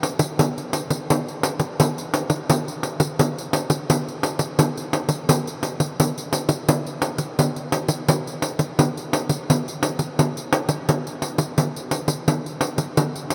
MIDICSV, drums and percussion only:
0, 0, Header, 1, 2, 480
1, 0, Start_track
1, 0, Tempo, 699301
1, 1706, Time_signature, 4, 2, 24, 8
1, 9161, End_track
2, 0, Start_track
2, 0, Title_t, "Pandeiro"
2, 21, Note_on_c, 9, 54, 61
2, 90, Note_off_c, 9, 54, 0
2, 132, Note_on_c, 9, 54, 64
2, 201, Note_off_c, 9, 54, 0
2, 269, Note_on_c, 9, 54, 82
2, 337, Note_off_c, 9, 54, 0
2, 397, Note_on_c, 9, 54, 35
2, 466, Note_off_c, 9, 54, 0
2, 502, Note_on_c, 9, 54, 65
2, 571, Note_off_c, 9, 54, 0
2, 621, Note_on_c, 9, 54, 59
2, 689, Note_off_c, 9, 54, 0
2, 757, Note_on_c, 9, 54, 85
2, 826, Note_off_c, 9, 54, 0
2, 882, Note_on_c, 9, 54, 28
2, 951, Note_off_c, 9, 54, 0
2, 984, Note_on_c, 9, 54, 72
2, 1053, Note_off_c, 9, 54, 0
2, 1095, Note_on_c, 9, 54, 59
2, 1164, Note_off_c, 9, 54, 0
2, 1233, Note_on_c, 9, 54, 82
2, 1302, Note_off_c, 9, 54, 0
2, 1360, Note_on_c, 9, 54, 32
2, 1429, Note_off_c, 9, 54, 0
2, 1467, Note_on_c, 9, 54, 68
2, 1535, Note_off_c, 9, 54, 0
2, 1576, Note_on_c, 9, 54, 58
2, 1645, Note_off_c, 9, 54, 0
2, 1713, Note_on_c, 9, 54, 76
2, 1782, Note_off_c, 9, 54, 0
2, 1840, Note_on_c, 9, 54, 32
2, 1909, Note_off_c, 9, 54, 0
2, 1944, Note_on_c, 9, 54, 53
2, 2013, Note_off_c, 9, 54, 0
2, 2058, Note_on_c, 9, 54, 65
2, 2127, Note_off_c, 9, 54, 0
2, 2192, Note_on_c, 9, 54, 75
2, 2261, Note_off_c, 9, 54, 0
2, 2323, Note_on_c, 9, 54, 36
2, 2392, Note_off_c, 9, 54, 0
2, 2425, Note_on_c, 9, 54, 69
2, 2493, Note_off_c, 9, 54, 0
2, 2539, Note_on_c, 9, 54, 60
2, 2607, Note_off_c, 9, 54, 0
2, 2675, Note_on_c, 9, 54, 90
2, 2744, Note_off_c, 9, 54, 0
2, 2804, Note_on_c, 9, 54, 29
2, 2873, Note_off_c, 9, 54, 0
2, 2906, Note_on_c, 9, 54, 65
2, 2974, Note_off_c, 9, 54, 0
2, 3014, Note_on_c, 9, 54, 59
2, 3083, Note_off_c, 9, 54, 0
2, 3149, Note_on_c, 9, 54, 85
2, 3217, Note_off_c, 9, 54, 0
2, 3277, Note_on_c, 9, 54, 34
2, 3346, Note_off_c, 9, 54, 0
2, 3385, Note_on_c, 9, 54, 66
2, 3454, Note_off_c, 9, 54, 0
2, 3491, Note_on_c, 9, 54, 56
2, 3560, Note_off_c, 9, 54, 0
2, 3631, Note_on_c, 9, 54, 85
2, 3699, Note_off_c, 9, 54, 0
2, 3758, Note_on_c, 9, 54, 33
2, 3826, Note_off_c, 9, 54, 0
2, 3864, Note_on_c, 9, 54, 55
2, 3932, Note_off_c, 9, 54, 0
2, 3981, Note_on_c, 9, 54, 62
2, 4050, Note_off_c, 9, 54, 0
2, 4116, Note_on_c, 9, 54, 85
2, 4185, Note_off_c, 9, 54, 0
2, 4240, Note_on_c, 9, 54, 37
2, 4309, Note_off_c, 9, 54, 0
2, 4343, Note_on_c, 9, 54, 71
2, 4412, Note_off_c, 9, 54, 0
2, 4453, Note_on_c, 9, 54, 66
2, 4521, Note_off_c, 9, 54, 0
2, 4589, Note_on_c, 9, 54, 92
2, 4657, Note_off_c, 9, 54, 0
2, 4713, Note_on_c, 9, 54, 30
2, 4781, Note_off_c, 9, 54, 0
2, 4817, Note_on_c, 9, 54, 68
2, 4886, Note_off_c, 9, 54, 0
2, 4931, Note_on_c, 9, 54, 56
2, 4999, Note_off_c, 9, 54, 0
2, 5071, Note_on_c, 9, 54, 74
2, 5140, Note_off_c, 9, 54, 0
2, 5192, Note_on_c, 9, 54, 31
2, 5260, Note_off_c, 9, 54, 0
2, 5301, Note_on_c, 9, 54, 71
2, 5370, Note_off_c, 9, 54, 0
2, 5412, Note_on_c, 9, 54, 60
2, 5480, Note_off_c, 9, 54, 0
2, 5549, Note_on_c, 9, 54, 82
2, 5618, Note_off_c, 9, 54, 0
2, 5679, Note_on_c, 9, 54, 31
2, 5747, Note_off_c, 9, 54, 0
2, 5781, Note_on_c, 9, 54, 66
2, 5850, Note_off_c, 9, 54, 0
2, 5897, Note_on_c, 9, 54, 59
2, 5965, Note_off_c, 9, 54, 0
2, 6032, Note_on_c, 9, 54, 77
2, 6101, Note_off_c, 9, 54, 0
2, 6160, Note_on_c, 9, 54, 32
2, 6229, Note_off_c, 9, 54, 0
2, 6268, Note_on_c, 9, 54, 69
2, 6337, Note_off_c, 9, 54, 0
2, 6380, Note_on_c, 9, 54, 59
2, 6448, Note_off_c, 9, 54, 0
2, 6520, Note_on_c, 9, 54, 78
2, 6588, Note_off_c, 9, 54, 0
2, 6644, Note_on_c, 9, 54, 31
2, 6713, Note_off_c, 9, 54, 0
2, 6745, Note_on_c, 9, 54, 71
2, 6814, Note_off_c, 9, 54, 0
2, 6857, Note_on_c, 9, 54, 52
2, 6926, Note_off_c, 9, 54, 0
2, 6994, Note_on_c, 9, 54, 75
2, 7063, Note_off_c, 9, 54, 0
2, 7118, Note_on_c, 9, 54, 33
2, 7187, Note_off_c, 9, 54, 0
2, 7225, Note_on_c, 9, 54, 73
2, 7294, Note_off_c, 9, 54, 0
2, 7335, Note_on_c, 9, 54, 60
2, 7404, Note_off_c, 9, 54, 0
2, 7473, Note_on_c, 9, 54, 78
2, 7541, Note_off_c, 9, 54, 0
2, 7598, Note_on_c, 9, 54, 33
2, 7666, Note_off_c, 9, 54, 0
2, 7702, Note_on_c, 9, 54, 57
2, 7770, Note_off_c, 9, 54, 0
2, 7813, Note_on_c, 9, 54, 61
2, 7882, Note_off_c, 9, 54, 0
2, 7947, Note_on_c, 9, 54, 73
2, 8015, Note_off_c, 9, 54, 0
2, 8075, Note_on_c, 9, 54, 35
2, 8144, Note_off_c, 9, 54, 0
2, 8177, Note_on_c, 9, 54, 60
2, 8246, Note_off_c, 9, 54, 0
2, 8291, Note_on_c, 9, 54, 57
2, 8359, Note_off_c, 9, 54, 0
2, 8427, Note_on_c, 9, 54, 82
2, 8496, Note_off_c, 9, 54, 0
2, 8554, Note_on_c, 9, 54, 30
2, 8623, Note_off_c, 9, 54, 0
2, 8654, Note_on_c, 9, 54, 67
2, 8722, Note_off_c, 9, 54, 0
2, 8772, Note_on_c, 9, 54, 58
2, 8841, Note_off_c, 9, 54, 0
2, 8904, Note_on_c, 9, 54, 79
2, 8973, Note_off_c, 9, 54, 0
2, 9030, Note_on_c, 9, 54, 34
2, 9099, Note_off_c, 9, 54, 0
2, 9132, Note_on_c, 9, 54, 64
2, 9161, Note_off_c, 9, 54, 0
2, 9161, End_track
0, 0, End_of_file